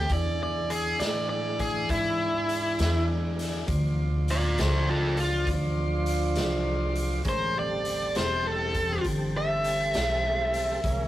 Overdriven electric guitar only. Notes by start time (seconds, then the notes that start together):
Already playing: G4
0.12 D5
0.43 D5
0.70 G#4
1.00 D5
1.29 D5
1.60 G#4
1.90 E4
4.31 F4 D5
4.61 A4 C5
4.90 F4 A4
5.20 F4
7.29 C5
7.59 D5
8.17 C5
8.47 A4
9.37 E5